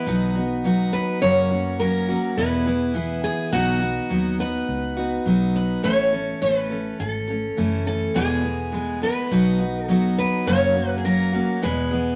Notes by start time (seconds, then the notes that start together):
Already playing: B4
0.06 B1 B2 F#3 B3 D#4 F#4
0.35 B3 D#4 F#4
0.64 F#3 B3 D#4 F#4
0.93 B4
1.22 F#1 F#2 C#3 F#3 A#3 C#4 F#4 C#5
1.50 F#3 A#3 C#4 F#4
1.79 F#3 A#3 C#4 F#4 A#4
2.08 F#3 A#3 C#4 F#4
2.37 E1 E2 B2 E3 B3 E4 G#4 B4
2.65 E3 B3 E4 G#4
2.94 E3 B3 E4 G#4
3.24 G#4
3.52 B1 B2 F#3 B3 D#4 F#4
3.80 B3 D#4 F#4
4.09 D#2 F#3 B3 D#4 F#4
4.39 B3 D#4 F#4 B4
4.69 C#2
4.97 B3 D#4 F#4
5.25 B1 F#3 B3 D#4 F#4
5.56 B4
5.83 A1 A2 E3 A3 C#4 A4 C#5
6.13 A3 C#4 A4
6.41 A1 E3 A3 C#4 A4 B4
6.70 A3 C#4 A4
7.00 G#1 A4
7.28 A3 C#4 A4
7.57 F#1 E3 A3 C#4 A4
7.87 A4
8.14 E1 E2 B2 E3 G#3 B3 G#4
8.43 E3 G#3 B3 G#4
8.72 E3 G#3 B3 G#4
9.02 E3 G#3 B3 G#4 B4
9.31 B1 B2 F#3 B3 D#4 F#4
9.60 B3 D#4 F#4
9.85 F#3 A4
9.89 B3 D#4 F#4
10.18 B4
10.46 F#1 F#2 C#3 F#3 A#3 C#4 F#4 C#5
10.75 F#3 A#3 C#4 F#4
10.98 G#4
11.05 F#3 A#3 C#4 F#4 A#4
11.33 F#3 A#3 C#4 F#4
11.62 E1 E2 B2 E3 G#3 B3 G#4 B4
11.91 E3 G#3 B3 G#4